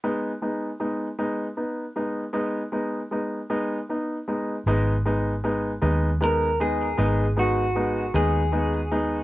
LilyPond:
<<
  \new Staff \with { instrumentName = "Clean electric guitar" } { \time 6/8 \key gis \minor \tempo 4. = 52 r2. | r2. | r2 ais'8 gis'8~ | gis'8 fis'4 gis'4 r8 | }
  \new Staff \with { instrumentName = "Grand piano" } { \time 6/8 \key gis \minor <gis b dis'>8 <gis b dis'>8 <gis b dis'>8 <gis b dis'>8 <b dis'>8 <gis b dis'>8 | <gis b dis'>8 <gis b dis'>8 <gis b dis'>8 <gis b dis'>8 <b dis'>8 <gis b dis'>8 | <gis b dis'>8 <gis b dis'>8 <gis b dis'>8 <gis b dis'>8 <gis b dis'>8 <gis b dis'>8 | <gis b dis'>8 <gis b dis'>8 <gis b dis'>8 <gis b dis'>8 <gis b dis'>8 <gis b dis'>8 | }
  \new Staff \with { instrumentName = "Fingered electric bass" } { \clef bass \time 6/8 \key gis \minor r2. | r2. | gis,,4. dis,4. | gis,,4. dis,4. | }
>>